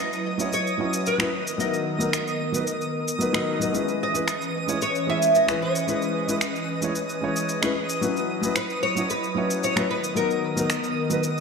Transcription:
Already playing: F#3 E4 B4 D#5 D#6
0.13 shaker
0.38 F#3 C#4 E4 C#5, shaker
0.53 C#5, shaker
0.67 shaker
0.78 F#3 C#4 E4 C#5
0.93 shaker
1.06 B4, shaker
1.18 F#3 C#4 E4 B4, finger snap, shaker
1.33 D#3 B3 A#4
1.47 A#4, shaker
1.58 F#3 B3 D#4 A#4 D#5, shaker
1.74 shaker
1.99 F#3 B3 D#4 A#4, shaker
2.13 finger snap, shaker
2.28 shaker
2.52 F#3 B3 D#4 B4, shaker
2.67 shaker
2.81 shaker
3.08 shaker
3.19 F#3 B3 D#4 B4, shaker
3.33 F#3 B3 D#4 A#4, finger snap, shaker
3.60 F#3 B3 D#4 A#4, shaker
3.72 E3 G#3 C#4 E4 B4, shaker
3.88 shaker
4.03 D#5
4.13 G#3 C#4 E4 B4, shaker
4.28 finger snap, shaker
4.42 shaker
4.66 G#3 C#4 E4 C#5, shaker
4.81 C#5, shaker
4.95 shaker
5.06 G#3 C#4 E4 C#5 E5
5.22 shaker
5.35 D#5, shaker
5.46 G#3 C#4 E4 B4, finger snap, shaker
5.62 C#5
5.75 shaker
5.87 G#3 C#4 E4 B4, shaker
6.02 shaker
6.27 G#3 C#4 E4 B4, shaker
6.41 finger snap, shaker
6.56 shaker
6.81 G#3 C#4 E4 C#5, shaker
6.95 shaker
7.09 shaker
7.21 G#3 C#4 E4 C#5
7.36 shaker
7.49 shaker
7.62 G#3 C#4 E4 B4, finger snap, shaker
7.89 shaker
8.01 F#3 C#4 E4 B4, shaker
8.17 shaker
8.41 F#3 C#4 E4 B4, shaker
8.56 B4, finger snap, shaker
8.70 shaker
8.83 C#5
8.95 F#3 C#4 E4 C#5, shaker
9.10 B4, shaker
9.24 shaker
9.35 F#3 C#4 E4 C#5
9.50 shaker
9.63 C#5, shaker
9.76 F#3 C#4 E4 B4, finger snap, shaker
9.90 D#3 B3 A#4 B4
10.04 shaker
10.15 F#3 B3 D#4 A#4, shaker
10.31 shaker
10.56 F#3 B3 D#4 A#4, shaker
10.70 finger snap, shaker
10.84 shaker
11.10 F#3 B3 D#4 B4, shaker
11.23 shaker

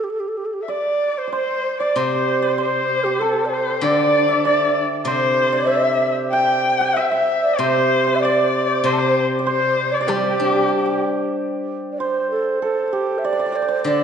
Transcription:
0.04 G4
0.10 A4
0.20 G4
0.28 A4
0.37 G4
0.45 A4
0.53 G4
0.61 A4 E5
0.68 D5
1.18 C5
1.27 D5
1.32 C5
1.80 D5
1.96 C3 C5
2.42 D5
2.58 C5
3.04 G4
3.19 A4
3.45 D5
3.50 C5
3.81 D3 D5
4.28 E5
4.43 D5
5.05 C3 C5
5.52 D5
5.67 E5
6.30 G5
6.79 G5
6.94 E5
7.03 G5
7.10 E5
7.42 D5
7.58 C3 C5
8.07 C5
8.15 E5
8.20 D5
8.25 D5
8.68 C5
8.83 C3 C5
8.93 A4
8.99 C5
9.39 D5
9.45 C5
9.92 D5
9.97 C5 D5
10.02 D5
10.07 G3 G4
10.16 G4
10.23 G4
10.31 G4
10.38 D4 G4
10.44 G4
10.53 G4
10.60 G4
10.69 G4
10.79 G4
10.86 G4
11.92 D5
11.99 C5
12.31 A4
12.62 A4
12.88 A4
12.93 G4
13.18 E5
13.24 D5
13.33 D5
13.39 D5
13.46 D5
13.52 C5 D5
13.62 D5
13.68 D5
13.84 D3 D5

